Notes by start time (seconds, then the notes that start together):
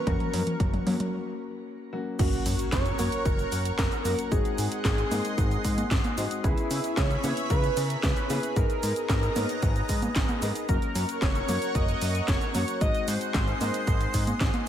Already playing: A#4 C#5 F#5 C#6
0.07 F#1 F#3 A#3 C#4 F#4 A#4, kick, closed hi-hat, mid tom
0.20 closed hi-hat, mid tom
0.33 F#2, open hi-hat, mid tom
0.47 closed hi-hat, mid tom
0.60 F#1, kick, closed hi-hat, mid tom
0.74 closed hi-hat, mid tom
0.86 F#2 F#3 A#3 C#4 A#4, open hi-hat, mid tom, high conga
1.00 closed hi-hat, mid tom
1.93 F#3 A#3 C#4 F#4
2.19 F#1 F#3 A#3 C#4 F#4 A#4 C#5 F#5 C#6, kick, closed hi-hat, crash, impact, cabasa
2.33 closed hi-hat, cabasa
2.46 F#2, open hi-hat, cabasa
2.59 closed hi-hat, cabasa
2.72 F#1 C#5, kick, snare, clap, closed hi-hat, cabasa
2.86 closed hi-hat, cabasa
2.99 F#2 F#3 A#3 C#4 A#4, open hi-hat, high conga, cabasa
3.12 closed hi-hat, cabasa
3.25 F#1 A#4, kick, closed hi-hat, cabasa
3.39 closed hi-hat, cabasa
3.52 F#2, open hi-hat, cabasa
3.65 closed hi-hat, cabasa
3.79 F#1 A#4, kick, snare, clap, closed hi-hat, cabasa
3.92 closed hi-hat, cabasa
4.05 F#2 F#3 A#3 C#4 F#4, open hi-hat, high conga, cabasa
4.19 closed hi-hat, cabasa
4.31 G#1 G#3 C4 D#4 F#4 G#4 D#5 C6, kick, closed hi-hat, cabasa
4.45 closed hi-hat, cabasa
4.58 G#2, open hi-hat, cabasa
4.72 closed hi-hat, cabasa
4.85 G#1 G#4, kick, snare, clap, closed hi-hat, cabasa
4.98 closed hi-hat, cabasa
5.11 G#2 G#3 C4 D#4 A#4, open hi-hat, high conga, cabasa
5.25 closed hi-hat, cabasa
5.38 G#1, kick, closed hi-hat, cabasa
5.51 closed hi-hat, cabasa
5.64 G#2, kick, open hi-hat, cabasa
5.78 closed hi-hat, high conga, cabasa
5.91 G#1, kick, snare, clap, closed hi-hat, cabasa
6.04 closed hi-hat, high conga, cabasa
6.17 G#2 G#3 C4 D#4 F#4, open hi-hat, cabasa
6.31 closed hi-hat, cabasa
6.44 C#2 B3 C#4 E4 G#4 C#5 E5 B5, kick, closed hi-hat, cabasa
6.58 closed hi-hat, cabasa
6.71 C#3, open hi-hat, cabasa
6.84 closed hi-hat, cabasa
6.97 C#2 C#5, kick, snare, clap, closed hi-hat, cabasa
7.11 closed hi-hat, cabasa
7.24 C#3 B3 C#4 E4 B4, open hi-hat, high conga, cabasa
7.37 closed hi-hat, cabasa
7.50 C#2 B4, kick, closed hi-hat, cabasa
7.64 closed hi-hat, cabasa
7.77 C#3, open hi-hat, cabasa
7.86 A#4
7.90 closed hi-hat, cabasa
8.03 C#2 B4, kick, snare, clap, closed hi-hat, cabasa
8.17 closed hi-hat, cabasa
8.30 C#3 B3 C#4 E4 G#4, open hi-hat, high conga, cabasa
8.43 closed hi-hat, cabasa
8.56 G#1 B3 D#4 G#4 A#4 D#5 A#5, kick, closed hi-hat, cabasa
8.70 closed hi-hat, cabasa
8.83 G#2, open hi-hat, cabasa
8.96 closed hi-hat, cabasa
9.09 G#1 A#4, kick, snare, clap, closed hi-hat, cabasa
9.23 closed hi-hat, cabasa
9.36 G#2 B3 D#4 G#4 C#5, open hi-hat, high conga, cabasa
9.49 closed hi-hat, cabasa
9.63 G#1, kick, closed hi-hat, cabasa
9.76 closed hi-hat, cabasa
9.89 G#2, kick, open hi-hat, cabasa
10.02 closed hi-hat, high conga, cabasa
10.16 G#1, kick, snare, clap, closed hi-hat, cabasa
10.29 closed hi-hat, high conga, cabasa
10.42 G#2 B3 D#4 G#4 A#4, open hi-hat, cabasa
10.55 closed hi-hat, cabasa
10.68 F#1 F#3 A#3 C#4 F#4 A#4 C#5 F#5 C#6, kick, closed hi-hat, cabasa
10.82 closed hi-hat, cabasa
10.95 F#2, open hi-hat, cabasa
11.09 closed hi-hat, cabasa
11.22 F#1 C#5, kick, snare, clap, closed hi-hat, cabasa
11.35 closed hi-hat, cabasa
11.48 F#2 F#3 A#3 C#4 A#4, open hi-hat, high conga, cabasa
11.62 closed hi-hat, cabasa
11.75 F#1 D#5, kick, closed hi-hat, cabasa
11.88 closed hi-hat, cabasa
12.02 F#2, open hi-hat, cabasa
12.15 closed hi-hat, cabasa
12.28 F#1 C#5, kick, snare, clap, closed hi-hat, cabasa
12.41 closed hi-hat, cabasa
12.55 F#2 F#3 A#3 C#4 F#4, open hi-hat, high conga, cabasa
12.68 closed hi-hat, cabasa
12.81 G#1 G#3 C4 D#4 F#4 G#4 D#5 C6, kick, closed hi-hat, cabasa
12.95 closed hi-hat, cabasa
13.08 G#2 C5, open hi-hat, cabasa
13.21 closed hi-hat, cabasa
13.34 G#1, kick, snare, clap, closed hi-hat, cabasa
13.48 closed hi-hat, cabasa
13.61 G#2 G#3 C4 D#4 A#4 C5, open hi-hat, high conga, cabasa
13.74 closed hi-hat, cabasa
13.87 G#1, kick, closed hi-hat, cabasa
14.01 closed hi-hat, cabasa
14.14 G#2, kick, open hi-hat, cabasa
14.27 closed hi-hat, high conga, cabasa
14.40 G#1, kick, snare, clap, closed hi-hat, cabasa
14.54 closed hi-hat, high conga, cabasa